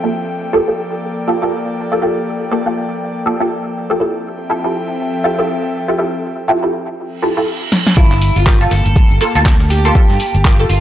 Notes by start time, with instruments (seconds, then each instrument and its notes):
Already playing: analog synth pad F3 A4 G5
0.04 synth stab A#3 F4 G4 A4, analog synth pad A#3 D5
0.53 synth stab A#3 F4 G4 A4
0.68 synth stab A#3 F4 G4 A4
1.27 synth stab A#3 F4 G4 A4
1.42 synth stab A#3 F4 G4 A4
1.92 synth stab A#3 F4 G4 A4
2.02 synth stab A#3 F4 G4 A4
2.51 synth stab A#3 F4 G4 A4
2.66 synth stab A#3 F4 G4 A4
3.26 synth stab A#3 F4 G4 A4
3.40 synth stab A#3 F4 G4 A4
3.90 synth stab A#3 F4 G4 A4
4.00 analog synth pad F3 C4 A4 E5 G5, synth stab E4 F4 G4 A4
4.50 synth stab E4 F4 G4 A4
4.64 synth stab E4 F4 G4 A4
5.24 synth stab E4 F4 G4 A4
5.39 synth stab E4 F4 G4 A4
5.88 synth stab E4 F4 G4 A4
5.98 synth stab E4 F4 G4 A4
6.48 synth stab E4 F4 G4 A4
6.63 synth stab E4 F4 G4 A4
6.98 reverse cymbal
7.22 synth stab E4 F4 G4 A4
7.37 synth stab E4 F4 G4 A4
7.72 snare
7.87 snare
7.97 fingered electric bass G1, synth stab A#3 F4 A4, analog synth pad A#3 G4 G5 A5, clean electric guitar E4, kick, closed hi-hat, shaker
8.12 clap, shaker
8.22 open hi-hat, shaker
8.36 fingered electric bass G1, clean electric guitar F4, closed hi-hat, shaker
8.46 synth stab A#3 F4 G4, kick, snare, clap, closed hi-hat, shaker
8.61 synth stab A#3 F4 A4, snare, closed hi-hat, shaker
8.71 fingered electric bass G1, clean electric guitar A4, snare, open hi-hat, shaker
8.86 fingered electric bass G1, closed hi-hat, shaker
8.96 kick, closed hi-hat, shaker
9.11 fingered electric bass G1, closed hi-hat, shaker
9.21 synth stab A#3 F4 A4, open hi-hat, shaker
9.35 fingered electric bass D2, synth stab A#3 F4 A4, snare, closed hi-hat, shaker
9.46 kick, snare, clap, closed hi-hat, shaker
9.60 snare, shaker
9.70 clean electric guitar G4, open hi-hat, shaker
9.85 synth stab A#3 F4 A4, closed hi-hat, shaker
9.95 synth stab A#3 F4 A4, kick, closed hi-hat, shaker
10.10 fingered electric bass G2, snare, closed hi-hat, shaker
10.20 open hi-hat, shaker
10.35 fingered electric bass G1, closed hi-hat, shaker
10.45 synth stab A#3 F4 G4, kick, snare, clap, closed hi-hat, shaker
10.59 synth stab A#3 F4 A4, closed hi-hat, shaker
10.69 fingered electric bass G1, clean electric guitar F4, open hi-hat, shaker